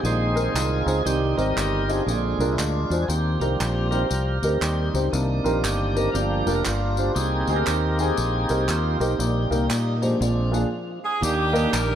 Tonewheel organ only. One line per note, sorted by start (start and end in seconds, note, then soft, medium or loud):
0.04 0.83 D#3 medium
0.04 0.56 G#3 soft
0.04 0.55 C4 medium
0.04 1.02 D#4 medium
0.04 1.02 G#4 medium
0.04 0.57 C5 loud
0.56 1.03 G#3 medium
0.56 1.03 C4 medium
0.56 1.03 F4 medium
1.03 1.84 D#3 medium
1.03 1.84 G3 soft
1.03 2.03 C4 medium
1.03 1.36 D#4 medium
1.03 1.36 G4 loud
1.03 1.07 G#4 medium
1.37 2.03 D#4 medium
1.37 2.03 G4 medium
1.37 1.90 A#4 medium
1.90 2.58 D4 medium
1.90 2.57 F4 medium
1.90 2.56 G#4 medium
2.07 2.45 D3 medium
2.07 2.45 G#3 soft
2.07 2.45 C4 medium
2.53 2.58 E4 medium
2.58 3.05 G#3 medium
2.58 3.06 D4 medium
2.58 3.05 F4 medium
3.02 3.08 G#4 medium
3.08 4.06 A#3 medium
3.08 3.40 C4 medium
3.08 3.88 G4 medium
3.40 4.07 F3 medium
3.40 4.07 G3 soft
3.40 4.08 C4 medium
3.91 4.89 G4 medium
3.91 4.63 A#4 medium
4.09 4.39 F3 soft
4.09 4.39 G3 soft
4.09 4.39 C4 soft
4.61 5.09 G3 soft
4.61 5.09 C4 soft
4.61 5.00 D#4 medium
5.12 6.10 D#3 medium
5.12 6.10 A#3 soft
5.12 6.10 D4 medium
5.44 5.64 F4 medium
5.64 5.96 G4 medium
5.98 6.16 A#4 medium
6.12 6.51 F3 medium
6.12 6.63 A#3 medium
6.12 6.63 D4 medium
6.12 6.53 G4 loud
6.55 6.64 A#4 medium
6.64 7.12 A#3 medium
6.64 7.12 D4 medium
6.64 7.17 F4 medium
7.15 8.99 A#3 soft
7.15 9.16 C4 medium
7.15 7.99 D#4 medium
7.15 8.99 G4 medium
7.15 7.59 G#4 medium
7.56 7.88 A#4 loud
7.90 7.98 A#4 medium
8.00 8.97 D#4 medium
8.00 8.71 G#4 medium
8.70 9.02 F4 medium
9.00 9.18 A#3 medium
9.00 9.19 D#4 medium
9.00 9.72 G4 medium
9.19 9.97 G3 medium
9.19 9.98 A#3 soft
9.19 9.68 D#4 medium
9.69 10.02 D#4 medium
10.02 10.99 F3 medium
10.02 10.19 G#3 medium
10.02 10.21 D4 medium
10.21 10.58 G#3 medium
10.21 10.58 C4 soft
10.21 10.59 D4 medium
11.22 11.95 D#3 medium
11.22 11.95 A#3 medium
11.22 11.95 D4 medium
11.22 11.95 G4 medium